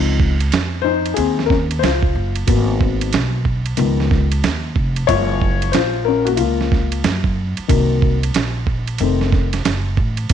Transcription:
Already playing: C#2 F3 C4 D#4
0.20 kick
0.40 ride
0.52 snare, hi-hat pedal, ride
0.82 D#4 C5
1.06 ride
1.14 D#2 C4 G#4, ride
1.39 snare
1.46 A#4
1.50 C#4, kick, snare
1.71 ride
1.79 C#2 C5
1.83 F4, snare, hi-hat pedal, ride
2.03 kick
2.15 F#1
2.35 ride
2.47 G#1 F#3 A#3 B3, kick, ride
2.81 kick
3.01 ride
3.13 B1, snare, hi-hat pedal, ride
3.45 kick
3.66 ride
3.77 C#2 D#3 F3 B3, ride
4.00 snare
4.11 kick, snare
4.32 ride
4.44 snare, hi-hat pedal, ride
4.76 F1, kick
4.96 ride
5.07 F#1 F3 G#3 A#3 F4 C#5, kick, ride
5.42 kick
5.62 ride
5.72 F4 C5, snare, hi-hat pedal, ride
6.05 C#4 A#4
6.25 A#3 F#4, ride
6.36 C#2 A#3 F4, ride
6.61 snare
6.72 kick, snare
6.92 ride
7.04 F#2, snare, hi-hat pedal, ride
7.24 kick
7.57 muted upright bass stroke, ride
7.68 C2 D#3 F#3 A#3, kick, ride
8.02 kick
8.23 ride
8.34 A#1, snare, hi-hat pedal, ride
8.67 kick
8.87 ride
8.98 F1 D#3 A3 C4, ride
9.21 snare
9.32 kick, snare
9.53 snare, ride
9.65 F#1, snare, hi-hat pedal, ride
9.97 A1, kick
10.17 ride
10.29 kick, ride

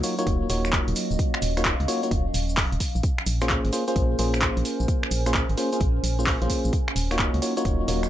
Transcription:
Already playing: F#3 C#4
0.03 A#3 D#4 F4 F#4 C#5, open hi-hat, shaker
0.18 A#3 D#4 F4 F#4 C#5, closed hi-hat, shaker
0.27 D#1, kick, closed hi-hat, shaker
0.42 D#5
0.50 D#1 A#3 D#4 F4 F#4 C#5, open hi-hat, shaker
0.65 F5, finger snap, shaker
0.73 kick, clap, shaker
0.88 D#1, closed hi-hat
0.96 open hi-hat, shaker
1.11 D#1, shaker
1.19 kick, closed hi-hat, shaker
1.34 finger snap
1.42 D#1, open hi-hat, shaker
1.57 A#3 D#4 F4 F#4 C#5, finger snap, closed hi-hat, shaker
1.64 kick, clap, shaker
1.80 C#2, closed hi-hat
1.88 A#3 D#4 F4 F#4 C#5, open hi-hat, shaker
2.03 A#3 D#4 F4 F#4 C#5, closed hi-hat, shaker
2.11 D#1, kick, closed hi-hat, shaker
2.34 D#1, open hi-hat, shaker
2.49 shaker
2.57 kick, clap, open hi-hat, shaker
2.72 D#1, closed hi-hat
2.80 kick, open hi-hat, shaker
2.95 A#1, shaker
3.03 kick, closed hi-hat, shaker
3.18 A#4, finger snap
3.26 A#1, open hi-hat, shaker
3.41 A#3 C#4 F4 G#4 C5, finger snap, closed hi-hat, shaker
3.48 C5, kick, clap, shaker
3.65 G#1, closed hi-hat
3.73 A#3 C#4 F4 G#4 C5, open hi-hat, shaker
3.85 A#3 C#4 F4 G#4 C5 G#5, closed hi-hat, shaker
3.96 A#1, kick, closed hi-hat, shaker
4.19 A#1 A#3 C#4 F4 G#4 C5, open hi-hat, shaker
4.34 finger snap, shaker
4.42 kick, clap, shaker
4.57 A#1, closed hi-hat
4.65 open hi-hat, shaker
4.80 A#1, shaker
4.88 kick, closed hi-hat, shaker
5.03 finger snap
5.11 A#1, open hi-hat, shaker
5.26 A#3 C#4 F4 G#4 C5, finger snap, closed hi-hat, shaker
5.34 kick, clap, shaker
5.49 G#1, closed hi-hat
5.57 A#3 C#4 F4 G#4 C5, open hi-hat, shaker
5.72 A#3 C#4 F4 G#4 C5, closed hi-hat, shaker
5.80 A#1, kick, closed hi-hat, shaker
6.04 A#1, open hi-hat, shaker
6.19 A#3 C#4 F4 G#4 C5, shaker
6.27 kick, clap, open hi-hat, shaker
6.42 A#1 A#3 C#4 F4 G#4 C5, closed hi-hat
6.50 kick, open hi-hat, shaker
6.64 A#1, shaker
6.73 kick, closed hi-hat, shaker
6.88 finger snap
6.96 D#1, open hi-hat, shaker
7.08 F#3 A#3 D#4 F4 F#4 C#5, finger snap, closed hi-hat, shaker
7.12 D#5
7.19 kick, clap, shaker
7.34 C#2, closed hi-hat
7.42 A#3 D#4 F4 F#4 C#5, open hi-hat, shaker
7.57 A#3 D#4 F4 F#4 C#5, closed hi-hat, shaker
7.65 D#1, kick, closed hi-hat, shaker
7.88 D#1 A#3 D#4 F4 F#4 C#5, open hi-hat, shaker
8.03 finger snap, shaker

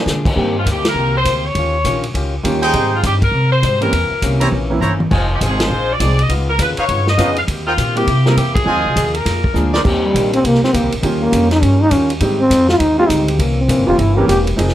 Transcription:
0.05 A#2 D3 F3 G#3 D4, snare, hi-hat pedal
0.25 kick, crash
0.35 G2 D#3 G3 A#3 C4 G4, kick
0.57 F4
0.64 D2 D#3 A#3 C4 G4, kick, hi-hat pedal, ride
0.71 G4
0.85 A#4, snare, ride
0.94 C2 D#3 A#3 C4 G4
1.17 C5
1.25 D2 D#3 A#3 C4 G4, kick, hi-hat pedal, ride
1.36 C5
1.45 C#5
1.55 D#2 D#3 C#4, kick, ride
1.59 F4 G4
1.84 A#1 D#3 C#4 F4 G4, kick, hi-hat pedal, ride
2.04 ride
2.14 C#2 D#3 C#4 F4 G4, kick, ride
2.43 D#2 D#3 G3 A#3 C#4 F4 G4, kick, hi-hat pedal, ride
2.62 D#4 G#4 C5 G5, ride
2.73 G#2 D#3 G3 G#3 C4 D#4 G4, kick, ride
2.96 F4
3.03 G2 G#2 G3 C4 D#4 G4, kick, hi-hat pedal, ride
3.22 A#4, kick, ride
3.32 G#2 C3 G3 C4 D#4
3.52 C5
3.62 G#2 G3 C4 D#4, kick, hi-hat pedal, ride
3.81 E3 A#3 C4 C#4 G4 A#4, ride
3.92 E2 C3 E3 A#3 C#4, kick, ride
4.10 muted upright bass stroke
4.22 C2 C3 E3 A#3 C#4, kick, hi-hat pedal, ride
4.40 E3 A#3 C4 C#4 E4 G4 C5 C#5 A#5, ride
4.51 A#1 C3 E3 A#3 C#4, kick
4.70 E3 A#3 C4 C#4 E4
4.80 G1 C3 E3 A#3 C#4 E4 C5 C#5 A#5, hi-hat pedal, mid tom
5.00 mid tom
5.11 F1 F3 C4 D#4 F4 G#4 C5 D#5 G#5, kick, crash
5.35 G4
5.40 G#1 F3 C4 D#4 G#4, kick, hi-hat pedal, ride
5.45 G#4
5.60 C5, snare, ride
5.69 A#1 F3 C4 D#4 G#4
5.93 D5
5.99 C2 F3 G#3 C4 D#4 G#4, kick, hi-hat pedal, ride
6.19 D#5, ride
6.28 C#2 C#3 B3 D#4 F4, kick, ride
6.49 A#4
6.59 D#2 C#3 B3 D#4 F4 B4, kick, hi-hat pedal, ride
6.77 D#4 B4 C#5 F5, muted upright bass stroke, ride
6.88 G2 C#3 B3 D#4 F4, kick, ride
7.07 D#5, snare
7.17 F2 C#3 F3 B3 C#4 D#4 F4 G#4 B4 C#5 F5, kick, hi-hat pedal, ride
7.36 F5, ride
7.47 D#2 D#3 A#3 C4 G4, kick, ride
7.66 D#4 F4 A#4 C5 G5
7.78 A#2 D#3 A#3 C4 G4, kick, hi-hat pedal, ride
7.96 G3 A#3 C4 E4 G4 A#4, ride
8.07 C3 A#3 E4 G4, kick, ride
8.26 G3 A#3 C4 E4 A#4, snare
8.36 E2 C3 A#3 E4 G4, kick, hi-hat pedal, ride
8.55 G#4, kick, ride
8.64 F2 F3 G#3 C4 D#4 F4 G#4 C5 D#5 G#5
8.68 G#4
8.76 D#2
8.86 C2
8.95 D#2 F3 C4 D#4 G#4, kick, hi-hat pedal, ride
9.15 A#4, ride
9.25 F2 A#2 F3 G#3 D4, kick, snare, ride
9.44 kick
9.54 D2 A#2 F3 G#3 A#3 D4 G#4, hi-hat pedal
9.73 D#4 A#4 C5 D5, snare
9.84 D#2 D#3 G3 A#3 C4 G4, kick, crash
10.04 G3
10.14 A#1 D#3 A#3 C4 G4, kick, hi-hat pedal, ride
10.33 C4, ride
10.43 C2 D#3 A#3 C4 G4, kick, ride
10.47 A#3
10.54 snare
10.62 C4, muted upright bass stroke, snare
10.73 D2 D#3 A#3 C4 G4, kick, hi-hat pedal, ride
10.83 C2
10.92 A#1, ride
11.01 D#2 D#3 G3 A#3 C#4 F4, kick, ride
11.21 A#3
11.31 F2 D#3 G3 C#4 F4, kick, hi-hat pedal, ride
11.51 D#4, snare, ride
11.61 G2 D#3 G3 C#4 F4, kick, ride
11.82 D#4
11.91 D#2 D#3 G3 C#4 F4, kick, hi-hat pedal, ride
12.10 ride
12.20 G#2 D#3 G3 G#3 C4 D#4 G4, kick, ride
12.40 C4
12.50 F2 G#2 G3 C4 D#4, kick, hi-hat pedal, ride
12.69 F4, snare
12.79 D#2 G#2 G3 C4 D#4, kick, ride
12.98 D#3 G3 G#3 C4 F4 G4
13.09 D2 G#2 G3 C4 D#4, kick, hi-hat pedal, ride
13.28 ride
13.38 C2 C3 E3 A#3 C#4, kick, ride
13.59 C4
13.68 A#1 C3 E3 A#3 C#4, kick, hi-hat pedal, ride
13.78 G1
13.86 E1 E3 A#3 C4 C#4 F4 G4
13.98 G1 C3 E3 A#3 C#4 E4, kick, ride
14.17 E3 A#3 C4 C#4 G4 A#4
14.28 E1 C3 E3 A#3 C#4 G4, kick, hi-hat pedal, ride
14.47 ride
14.56 F1 F2 D#3 F3 G#3 C4 D#4 G#4, kick, ride
14.68 snare

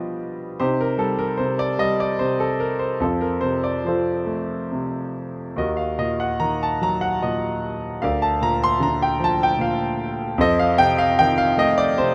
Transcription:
Already playing: B2 F3 G3 B3 D4 F4 G4 B4 C5 D5 D#5
0.60 C3 D#4 G4 C5
0.81 A#4
0.98 G3 A4
1.19 A#4
1.37 C3 C5
1.59 D5
1.79 G3 D#5
2.00 D5
2.19 C3 C5
2.40 A4
2.60 A#4
2.79 C5
3.00 F2 C4 F4 A4
3.21 A#4
3.41 C3 C5
3.64 D5
3.84 F3 F4 C5
3.88 A4
4.26 A3
4.72 C3
5.56 D#2 F#4 A#4 D#5
5.77 F5
5.98 A#2 D#5
6.20 F#5
6.40 D#3 A#5
6.63 A5
6.81 F#3 A#5
7.01 F#5
7.23 A#2 D#5
8.02 D2 A#4 D5 F5
8.22 A5
8.41 A#2 A#5
8.64 C6
8.80 D3 A#5
9.02 G5
9.20 F3
9.24 A5
9.43 G5
9.58 A#2 F5
10.38 F2 A4 C5 D#5
10.59 F5
10.78 C3 G5
10.98 F5
11.19 D#3 G5
11.38 F5
11.58 A3 D#5
11.78 D5
11.98 C3 C5

